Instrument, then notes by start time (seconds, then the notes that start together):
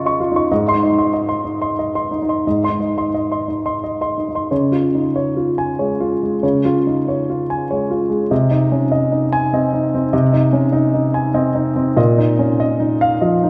grand piano
Already playing: C#3 D#4 F4 D#5 F5 C#6
0.06 D#5 C#6
0.20 F4
0.32 D#4
0.36 D#5 C#6
0.52 G#2 D#5
0.68 D#5 C6
0.72 D#4
0.83 D#4
0.98 D#5 C6
1.13 D#5
1.29 D#5 C6
1.44 D#4
1.62 D#5 C6
1.79 D#5
1.95 D#5 C6
2.11 D#4
2.22 D#4
2.29 D#5 C6
2.47 G#2 D#5
2.64 D#5 C6
2.69 D#4
2.80 D#4
2.98 D#5 C6
3.14 D#5
3.32 D#5 C6
3.48 D#4
3.66 D#5 C6
3.84 D#5
4.01 D#5 C6
4.18 D#4
4.28 D#4
4.35 D#5 C6
4.51 C#3 C#5
4.72 F4
4.95 D#4
5.16 C#5
5.37 F4
5.58 G#5
5.79 G#3 C#5
6.00 F4
6.23 G#3
6.43 C#3 C#5
6.65 F4
6.87 D#4
7.08 C#5
7.30 F4
7.50 G#5
7.71 G#3 C#5
7.91 F4
8.10 G#3
8.31 C3 D#5
8.51 D#4
8.72 C#4
8.92 D#5
9.12 D#4
9.33 G#5
9.53 C4 D#5
9.73 D#4
9.94 C4
10.13 C3 D#5
10.33 D#4
10.53 C#4
10.72 D#4 D#5
10.94 D#4
11.14 G#5
11.34 C4 D#5
11.55 D#4
11.76 C4
11.97 A#2 D#5
12.18 D#4
12.39 C#4
12.60 D#5
12.80 D#4
13.01 F5
13.21 F3 D#5
13.43 D#4